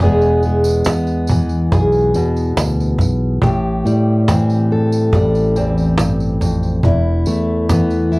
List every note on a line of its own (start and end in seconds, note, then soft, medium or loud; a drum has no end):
0.00 0.82 E1 medium
0.00 3.43 E2 medium
0.00 1.29 E3 medium
0.00 0.44 G#3 medium
0.00 0.87 B3 medium
0.00 cajon bass medium
0.00 cajon slap soft
0.00 tambourine soft
0.04 1.72 G#4 medium
0.21 tambourine soft
0.43 3.38 G#3 medium
0.43 cajon slap soft
0.43 tambourine soft
0.64 tambourine medium
0.85 1.68 E2 medium
0.85 3.43 B3 medium
0.85 cajon slap medium
0.85 tambourine loud
1.07 cajon slap soft
1.07 tambourine soft
1.27 3.38 E3 medium
1.27 cajon bass medium
1.27 tambourine medium
1.49 cajon slap soft
1.49 tambourine soft
1.72 2.13 B1 loud
1.72 3.38 G#4 medium
1.72 cajon bass loud
1.72 cajon slap soft
1.72 tambourine soft
1.92 tambourine soft
2.14 2.54 E2 medium
2.14 3.38 B2 medium
2.14 cajon slap soft
2.14 tambourine medium
2.36 tambourine soft
2.57 2.96 D2 medium
2.57 cajon slap loud
2.57 tambourine loud
2.80 tambourine soft
2.98 3.39 B1 medium
2.98 cajon bass medium
2.98 cajon slap soft
2.98 tambourine medium
3.42 3.83 A1 medium
3.42 5.56 A2 medium
3.42 4.71 G4 medium
3.42 cajon bass medium
3.42 tambourine soft
3.84 5.09 A2 medium
3.84 5.14 G3 medium
3.84 cajon slap soft
3.84 tambourine medium
4.28 6.79 E3 medium
4.28 5.55 C4 medium
4.28 cajon bass medium
4.28 cajon slap medium
4.28 tambourine medium
4.50 tambourine soft
4.71 6.85 A4 medium
4.71 cajon slap soft
4.92 tambourine medium
5.12 6.80 A1 loud
5.12 6.85 G3 medium
5.12 cajon bass medium
5.12 cajon slap soft
5.12 tambourine soft
5.34 cajon slap soft
5.34 tambourine soft
5.55 5.98 E2 medium
5.55 6.79 C4 medium
5.55 cajon slap soft
5.55 tambourine medium
5.78 tambourine soft
5.98 6.41 G2 medium
5.98 cajon slap loud
5.98 tambourine medium
6.20 tambourine soft
6.41 6.84 F2 medium
6.41 cajon bass medium
6.41 cajon slap soft
6.41 tambourine medium
6.63 tambourine soft
6.83 7.24 E1 loud
6.83 8.19 E2 medium
6.83 8.11 E4 medium
6.83 cajon bass medium
6.83 tambourine soft
7.26 8.19 E2 medium
7.26 8.19 A3 medium
7.26 cajon slap soft
7.26 tambourine medium
7.69 8.19 E3 medium
7.69 8.19 B3 medium
7.69 cajon bass medium
7.69 cajon slap medium
7.69 tambourine medium
7.91 tambourine soft
8.12 8.19 E4 medium
8.12 cajon slap soft
8.12 tambourine soft